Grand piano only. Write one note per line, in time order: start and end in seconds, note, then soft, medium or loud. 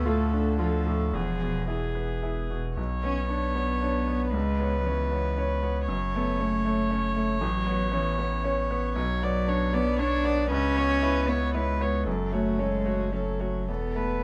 0.00 1.09 D2 medium
0.00 0.22 A2 soft
0.05 0.29 F4 soft
0.05 0.30 A4 soft
0.33 0.75 D4 soft
0.59 0.83 F4 soft
0.59 0.84 A4 soft
0.86 1.14 A2 soft
1.14 2.74 E2 soft
1.41 1.85 B2 soft
1.68 1.93 E4 soft
1.68 1.93 G#4 soft
1.95 2.39 B3 soft
2.23 2.48 E4 soft
2.23 2.48 G#4 soft
2.50 2.77 B2 soft
2.77 4.30 B1 soft
3.04 3.27 B3 soft
3.04 3.27 C#5 soft
3.29 3.53 D4 soft
3.29 3.53 C#5 soft
3.55 3.79 B3 soft
3.55 3.79 C#5 soft
3.82 4.05 D4 soft
3.82 4.06 C#5 soft
4.07 4.31 B3 soft
4.07 4.31 C#5 soft
4.34 5.85 C#2 soft
4.59 4.83 B3 soft
4.59 4.83 C#5 soft
4.86 5.09 C#4 soft
4.86 5.09 C#5 soft
5.12 5.35 B3 soft
5.12 5.35 C#5 soft
5.37 5.61 C#4 soft
5.37 5.61 C#5 soft
5.62 5.86 B3 soft
5.62 5.86 C#5 soft
5.88 7.38 F#2 soft
6.15 6.38 A3 soft
6.15 6.38 C#5 soft
6.39 6.63 C#4 soft
6.39 6.63 C#5 soft
6.65 6.89 A3 soft
6.65 6.89 C#5 soft
6.90 7.14 C#4 soft
6.90 7.14 C#5 soft
7.16 7.40 A3 soft
7.16 7.40 C#5 soft
7.41 8.92 A1 medium
7.66 7.90 B3 soft
7.66 7.90 C#5 soft
7.92 8.16 C#4 soft
7.92 8.16 C#5 soft
8.18 8.42 B3 soft
8.18 8.42 C#5 soft
8.44 8.68 C#4 soft
8.44 8.68 C#5 soft
8.71 8.94 B3 soft
8.71 8.94 C#5 soft
8.96 10.46 B1 medium
9.23 9.46 B3 soft
9.23 9.46 C#5 soft
9.47 9.71 D4 soft
9.47 9.71 C#5 soft
9.73 9.96 B3 soft
9.73 9.96 C#5 soft
9.99 10.22 D4 soft
9.99 10.22 C#5 medium
10.24 10.48 B3 soft
10.24 10.48 C#5 soft
10.51 12.02 C#2 medium
10.77 11.00 B3 soft
10.77 11.01 C#5 soft
11.03 11.26 E4 soft
11.03 11.26 C#5 soft
11.29 11.52 B3 soft
11.29 11.52 C#5 soft
11.54 11.78 E4 soft
11.54 11.78 C#5 soft
11.81 12.04 B3 soft
11.81 12.04 C#5 soft
12.06 13.64 F#2 medium
12.32 12.55 A3 soft
12.32 12.56 C#5 soft
12.59 12.82 C#4 soft
12.59 12.83 C#5 soft
12.85 13.09 A3 soft
12.85 13.09 C#5 soft
13.12 13.37 C#4 soft
13.12 13.37 C#5 soft
13.39 13.65 A3 soft
13.39 13.65 C#5 soft
13.69 14.24 E2 soft
13.95 14.20 A3 soft
13.95 14.20 A4 soft